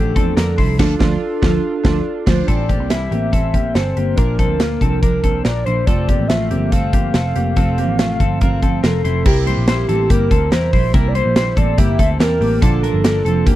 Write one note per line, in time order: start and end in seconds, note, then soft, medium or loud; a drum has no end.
0.00 0.16 A1 medium
0.00 0.16 D3 medium
0.00 0.16 F3 medium
0.00 0.16 A3 medium
0.00 0.15 D4 medium
0.00 0.16 D4 medium
0.00 0.75 D4 medium
0.00 0.76 F4 medium
0.00 0.16 G4 medium
0.00 0.75 A4 loud
0.00 0.77 A4 medium
0.16 0.34 E2 medium
0.16 0.37 F3 soft
0.16 0.37 A3 medium
0.16 0.37 C4 medium
0.16 0.37 D4 medium
0.16 0.36 A4 medium
0.16 kick medium
0.16 closed hi-hat medium
0.37 0.55 F2 medium
0.37 0.58 D3 medium
0.37 0.59 F3 medium
0.37 0.58 A3 medium
0.37 0.58 D4 medium
0.37 0.57 D4 medium
0.37 0.57 A#4 medium
0.37 snare medium
0.37 closed hi-hat medium
0.58 0.79 C2 medium
0.58 0.78 F3 soft
0.58 0.79 A3 medium
0.58 0.79 D4 medium
0.58 0.79 E4 medium
0.58 0.79 C5 medium
0.58 kick medium
0.58 open hi-hat medium
0.79 0.94 D2 loud
0.79 0.93 D3 loud
0.79 0.94 F3 loud
0.79 0.94 A3 loud
0.79 0.94 D4 medium
0.79 0.94 D4 loud
0.79 0.94 F4 medium
0.79 0.94 A4 loud
0.79 2.23 A4 medium
0.79 kick loud
0.79 snare loud
0.79 crash medium
0.99 1.15 D2 loud
0.99 1.16 F3 loud
0.99 1.15 A3 loud
0.99 1.14 D4 loud
0.99 1.15 F4 loud
0.99 kick loud
0.99 snare loud
1.42 1.57 D2 medium
1.42 1.58 F3 loud
1.42 1.58 A3 loud
1.42 1.56 D4 medium
1.42 1.57 D4 loud
1.42 1.57 F4 loud
1.42 kick loud
1.42 snare loud
1.83 1.99 D2 loud
1.83 2.00 F3 loud
1.83 1.99 A3 medium
1.83 1.98 D4 loud
1.83 1.99 D4 loud
1.83 1.99 F4 medium
1.83 kick loud
1.83 snare loud
2.26 2.41 D2 loud
2.26 2.42 F3 medium
2.26 2.42 A3 medium
2.26 2.41 D4 loud
2.26 2.41 D4 medium
2.26 2.42 F4 loud
2.26 2.49 C5 medium
2.26 kick loud
2.26 snare loud
2.26 crash medium
2.46 2.80 A1 loud
2.46 2.69 A2 medium
2.46 2.69 E3 medium
2.46 2.69 G3 medium
2.46 4.14 C4 medium
2.46 2.69 C4 medium
2.46 2.70 C4 medium
2.46 2.68 E4 medium
2.46 4.15 G4 soft
2.46 2.69 A4 medium
2.46 4.15 A4 medium
2.46 2.91 D5 medium
2.46 kick medium
2.46 closed hi-hat medium
2.69 2.90 G3 soft
2.69 2.91 A#3 medium
2.69 2.91 C4 soft
2.69 2.90 E4 soft
2.69 2.90 G4 medium
2.69 kick medium
2.69 closed hi-hat medium
2.80 3.07 C2 medium
2.89 3.12 E3 medium
2.89 3.12 G3 medium
2.89 3.11 C4 medium
2.89 3.12 E4 medium
2.89 3.10 E4 medium
2.89 3.31 E5 loud
2.89 snare loud
2.89 closed hi-hat medium
3.11 3.72 A1 medium
3.11 3.32 G3 soft
3.11 3.33 A#3 medium
3.11 3.33 C4 soft
3.11 3.33 E4 soft
3.11 3.33 G4 medium
3.11 closed hi-hat medium
3.31 3.54 A2 medium
3.31 3.54 E3 medium
3.31 3.55 G3 medium
3.31 3.55 C4 medium
3.31 3.54 C4 medium
3.31 3.52 E4 medium
3.31 3.54 A4 medium
3.31 3.76 E5 loud
3.31 kick medium
3.31 closed hi-hat medium
3.54 3.75 G3 soft
3.54 3.76 A#3 medium
3.54 3.75 C4 soft
3.54 3.75 E4 soft
3.54 3.75 G4 medium
3.54 kick medium
3.54 closed hi-hat medium
3.74 3.94 G1 medium
3.74 3.96 E3 medium
3.74 3.97 G3 medium
3.74 3.97 C4 medium
3.74 3.96 C4 medium
3.74 3.95 E4 medium
3.74 3.97 A4 medium
3.74 4.18 C5 medium
3.74 snare medium
3.74 closed hi-hat medium
3.96 4.15 G1 medium
3.96 4.18 G3 soft
3.96 4.18 A#3 medium
3.96 4.18 C4 soft
3.96 4.18 E4 soft
3.96 4.18 G4 medium
3.96 closed hi-hat medium
4.16 4.50 A#1 loud
4.16 4.39 A#2 medium
4.16 4.39 F3 medium
4.16 4.39 A#3 medium
4.16 5.83 D4 medium
4.16 4.39 D4 medium
4.16 4.37 D4 medium
4.16 5.84 F4 medium
4.16 5.01 A#4 loud
4.16 4.39 A#4 medium
4.16 5.85 A#4 medium
4.16 kick loud
4.16 closed hi-hat medium
4.38 4.59 F3 soft
4.38 4.60 A#3 soft
4.38 4.61 C4 medium
4.38 4.60 D4 medium
4.38 4.60 A4 medium
4.38 kick medium
4.38 closed hi-hat medium
4.50 4.77 D2 medium
4.60 4.81 A#2 medium
4.60 4.82 F3 medium
4.60 4.82 A#3 medium
4.60 4.80 D4 medium
4.60 4.81 F4 medium
4.60 snare loud
4.60 closed hi-hat medium
4.81 5.42 C2 medium
4.81 5.02 F3 soft
4.81 5.03 A#3 soft
4.81 5.03 C4 medium
4.81 5.03 D4 medium
4.81 5.02 A4 medium
4.81 kick medium
4.81 closed hi-hat medium
5.02 5.24 A#2 medium
5.02 5.24 F3 medium
5.02 5.24 A#3 medium
5.02 5.24 D4 medium
5.02 5.23 D4 medium
5.02 5.42 A#4 medium
5.02 5.23 A#4 medium
5.02 kick medium
5.02 closed hi-hat medium
5.24 5.44 F3 soft
5.24 5.45 A#3 soft
5.24 5.45 C4 medium
5.24 5.45 D4 medium
5.24 5.45 A4 medium
5.24 kick medium
5.24 closed hi-hat medium
5.43 5.63 A#1 medium
5.43 5.66 A#2 medium
5.43 5.67 F3 medium
5.43 5.66 A#3 medium
5.43 5.67 D4 medium
5.43 5.66 A#4 medium
5.43 5.66 D5 medium
5.43 snare medium
5.43 closed hi-hat medium
5.47 5.65 D4 medium
5.64 5.85 A#1 medium
5.64 5.87 F3 soft
5.64 5.88 A#3 soft
5.64 5.88 D4 soft
5.64 5.88 E4 medium
5.64 5.88 C5 loud
5.64 5.87 C5 medium
5.64 closed hi-hat medium
5.86 6.14 F1 loud
5.86 6.09 F2 medium
5.86 6.09 C3 medium
5.86 6.09 F3 medium
5.86 6.08 A3 medium
5.86 9.21 C4 medium
5.86 6.09 C4 medium
5.86 6.07 C4 medium
5.86 9.22 F4 medium
5.86 6.09 A4 medium
5.86 9.23 A4 medium
5.86 6.29 D5 loud
5.86 kick loud
5.86 closed hi-hat medium
6.08 6.29 F3 soft
6.08 6.30 A3 soft
6.08 6.30 A#3 medium
6.08 6.30 C4 medium
6.08 6.29 G4 medium
6.08 kick medium
6.08 closed hi-hat medium
6.19 6.53 A1 medium
6.28 6.51 C3 medium
6.28 6.51 F3 medium
6.28 6.51 A3 medium
6.28 6.50 C4 medium
6.28 6.50 F4 medium
6.28 6.70 E5 loud
6.28 snare loud
6.28 closed hi-hat medium
6.51 7.12 G1 medium
6.51 6.71 F3 soft
6.51 6.72 A3 medium
6.51 6.73 A#3 medium
6.51 6.72 C4 soft
6.51 6.72 G4 medium
6.51 closed hi-hat medium
6.71 6.93 F2 medium
6.71 6.93 C3 medium
6.71 6.94 F3 medium
6.71 6.93 A3 medium
6.71 6.92 C4 loud
6.71 6.94 C4 medium
6.71 6.94 A4 medium
6.71 8.79 F5 loud
6.71 kick medium
6.71 closed hi-hat medium
6.93 7.13 F3 soft
6.93 7.14 A3 soft
6.93 7.15 A#3 medium
6.93 7.15 C4 soft
6.93 7.15 G4 medium
6.93 kick medium
6.93 closed hi-hat medium
7.14 7.33 F1 medium
7.14 7.35 C3 medium
7.14 7.36 F3 medium
7.14 7.35 A3 medium
7.14 7.36 C4 medium
7.14 7.34 C4 medium
7.14 7.36 A4 medium
7.14 snare medium
7.14 closed hi-hat medium
7.35 7.54 F1 loud
7.35 7.56 F3 soft
7.35 7.56 A3 medium
7.35 7.57 A#3 medium
7.35 7.56 C4 medium
7.35 7.57 G4 medium
7.35 closed hi-hat medium
7.56 7.89 F1 loud
7.56 7.78 F2 medium
7.56 7.78 C3 medium
7.56 7.78 F3 loud
7.56 7.78 A3 medium
7.56 7.78 C4 medium
7.56 7.77 C4 medium
7.56 7.78 A4 loud
7.56 kick loud
7.56 closed hi-hat medium
7.78 7.98 F3 soft
7.78 7.99 A3 medium
7.78 8.00 A#3 medium
7.78 7.99 C4 medium
7.78 7.99 G4 medium
7.78 closed hi-hat medium
7.89 8.16 A1 medium
7.98 8.20 C3 medium
7.98 8.20 F3 medium
7.98 8.21 A3 medium
7.98 8.20 A3 medium
7.98 8.19 C4 medium
7.98 8.20 F4 medium
7.98 snare loud
7.98 closed hi-hat medium
8.20 8.80 G1 medium
8.20 8.41 F3 medium
8.20 8.41 A3 medium
8.20 8.41 C4 medium
8.20 8.42 C4 medium
8.20 8.41 A4 medium
8.20 kick medium
8.20 closed hi-hat medium
8.41 8.62 F2 medium
8.41 8.63 C3 medium
8.41 8.63 F3 medium
8.41 8.62 A3 medium
8.41 8.61 C4 loud
8.41 8.63 F4 medium
8.41 8.62 A#4 medium
8.41 kick medium
8.41 closed hi-hat medium
8.62 8.82 F3 medium
8.62 8.83 A3 medium
8.62 8.83 C4 medium
8.62 8.84 C4 medium
8.62 8.83 A4 medium
8.62 kick medium
8.62 closed hi-hat medium
8.83 9.02 F1 medium
8.83 9.04 C3 medium
8.83 9.05 F3 medium
8.83 9.05 A3 medium
8.83 9.03 C4 medium
8.83 9.05 F4 medium
8.83 9.28 A4 medium
8.83 9.04 A#4 medium
8.83 snare loud
8.83 closed hi-hat medium
9.04 9.23 F1 medium
9.04 9.26 F3 soft
9.04 9.26 A3 medium
9.04 9.26 C4 medium
9.04 9.25 E4 medium
9.04 9.26 C5 medium
9.04 closed hi-hat medium
9.25 9.53 C2 loud
9.25 9.47 C3 medium
9.25 9.47 G3 medium
9.25 9.46 A#3 medium
9.25 12.16 C4 medium
9.25 12.16 E4 medium
9.25 9.47 E4 medium
9.25 9.45 E4 medium
9.25 10.11 G4 loud
9.25 12.17 G4 medium
9.25 9.46 A#4 loud
9.25 12.18 A#4 medium
9.25 kick loud
9.25 crash loud
9.46 9.67 G3 medium
9.46 9.68 A#3 medium
9.46 9.68 E4 medium
9.46 9.67 C5 medium
9.46 closed hi-hat medium
9.58 9.84 A#1 medium
9.68 9.89 C3 medium
9.68 9.89 G3 medium
9.68 9.89 A#3 medium
9.68 9.90 E4 medium
9.68 9.87 E4 medium
9.68 9.88 C5 medium
9.68 snare loud
9.68 closed hi-hat medium
9.89 10.07 A1 medium
9.89 10.09 G3 medium
9.89 10.09 A#3 medium
9.89 10.10 C4 medium
9.89 10.10 E4 medium
9.89 10.10 A4 medium
9.89 closed hi-hat medium
10.09 10.28 G1 medium
10.09 10.31 C3 medium
10.09 10.31 G3 medium
10.09 10.30 A#3 medium
10.09 10.32 A#3 medium
10.09 10.29 E4 medium
10.09 10.31 G4 medium
10.09 10.54 A#4 loud
10.09 kick loud
10.09 closed hi-hat medium
10.30 10.49 D2 medium
10.30 10.50 G3 soft
10.30 10.51 A#3 soft
10.30 10.53 C4 medium
10.30 10.52 E4 medium
10.30 10.52 A4 medium
10.30 kick medium
10.30 closed hi-hat medium
10.51 10.70 E2 medium
10.51 10.73 C3 medium
10.51 10.73 G3 medium
10.51 10.72 A#3 medium
10.51 10.73 E4 medium
10.51 10.71 E4 medium
10.51 10.73 A#4 medium
10.51 10.93 C5 medium
10.51 snare loud
10.51 closed hi-hat medium
10.73 10.91 A#1 loud
10.73 10.93 G3 soft
10.73 10.94 A#3 medium
10.73 10.94 E4 medium
10.73 10.94 C5 medium
10.73 kick medium
10.73 open hi-hat medium
10.94 11.21 C2 loud
10.94 11.15 C3 medium
10.94 11.15 G3 medium
10.94 11.14 A#3 medium
10.94 11.15 E4 medium
10.94 11.13 E4 medium
10.94 11.09 A#4 loud
10.94 11.14 A#4 loud
10.94 kick loud
10.94 closed hi-hat medium
11.08 11.17 D5 medium
11.15 11.35 G3 soft
11.15 11.36 A#3 medium
11.15 11.36 E4 medium
11.15 11.35 C5 medium
11.15 11.59 C5 loud
11.15 closed hi-hat medium
11.26 11.53 A#1 medium
11.36 11.57 C3 medium
11.36 11.57 G3 medium
11.36 11.56 A#3 medium
11.36 11.58 E4 medium
11.36 11.55 E4 medium
11.36 11.56 C5 medium
11.36 snare loud
11.36 closed hi-hat medium
11.56 11.75 A1 medium
11.56 11.77 G3 soft
11.56 11.77 A#3 medium
11.56 11.79 C4 medium
11.56 11.78 E4 medium
11.56 11.78 A4 medium
11.56 11.79 D5 loud
11.56 kick medium
11.56 closed hi-hat medium
11.78 11.96 G1 loud
11.78 11.99 C3 medium
11.78 11.99 G3 medium
11.78 11.99 A#3 medium
11.78 11.98 A#3 medium
11.78 11.97 E4 medium
11.78 11.99 G4 medium
11.78 11.99 E5 loud
11.78 kick loud
11.78 closed hi-hat medium
11.98 12.17 D2 medium
11.98 12.19 G3 soft
11.98 12.20 A#3 medium
11.98 12.21 C4 medium
11.98 12.20 E4 medium
11.98 12.19 A4 medium
11.98 12.09 E5 loud
11.98 kick medium
11.98 closed hi-hat medium
12.19 12.38 E2 medium
12.19 12.41 C3 medium
12.19 12.41 G3 medium
12.19 12.41 A#3 medium
12.19 12.62 C4 soft
12.19 12.62 E4 soft
12.19 12.41 E4 medium
12.19 12.39 E4 medium
12.19 12.63 G4 soft
12.19 12.41 A#4 medium
12.19 12.63 A#4 loud
12.19 12.63 A5 medium
12.19 snare loud
12.19 closed hi-hat medium
12.40 12.59 A1 loud
12.40 12.62 G3 soft
12.40 12.63 A#3 medium
12.40 12.62 A#3 medium
12.40 12.62 E4 medium
12.40 12.62 G4 medium
12.40 open hi-hat medium
12.61 12.89 A#1 loud
12.61 12.83 A#2 medium
12.61 12.83 D3 medium
12.61 12.84 F3 medium
12.61 13.55 A#3 medium
12.61 12.83 A#3 medium
12.61 13.55 D4 medium
12.61 12.83 D4 medium
12.61 12.83 D4 loud
12.61 13.55 F4 medium
12.61 13.47 A4 loud
12.61 12.83 A4 loud
12.61 12.82 A4 medium
12.61 13.55 A5 medium
12.61 kick loud
12.61 closed hi-hat medium
12.83 13.03 F3 soft
12.83 13.03 A#3 medium
12.83 13.04 D4 medium
12.83 13.04 A4 medium
12.83 13.03 A#4 medium
12.83 closed hi-hat medium
12.94 13.21 G1 loud
13.04 13.25 F3 medium
13.04 13.25 A#3 medium
13.04 13.26 D4 medium
13.04 13.25 D4 medium
13.04 13.23 A4 medium
13.04 13.25 A#4 medium
13.04 snare loud
13.04 closed hi-hat medium
13.25 13.43 F1 medium
13.25 13.46 F3 medium
13.25 13.46 A#3 medium
13.25 13.47 C4 medium
13.25 13.46 D4 medium
13.25 13.46 A4 medium
13.25 closed hi-hat medium
13.46 13.55 F2 medium
13.46 13.55 A#2 medium
13.46 13.55 D3 medium
13.46 13.55 F3 medium
13.46 13.55 A#3 medium
13.46 13.55 D4 medium
13.46 13.55 G4 medium
13.46 13.55 A4 loud
13.46 13.55 A#4 loud
13.46 kick loud
13.46 closed hi-hat medium